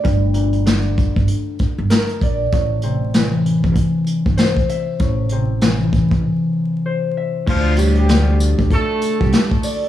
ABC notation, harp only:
X:1
M:4/4
L:1/8
Q:"Swing 16ths" 1/4=97
K:Aphr
V:1 name="Harp" clef=bass
G,, B,, D,4 B d | A,, C, E,4 c e | A,, C, E,4 c e | D,, A,, D,4 A d |]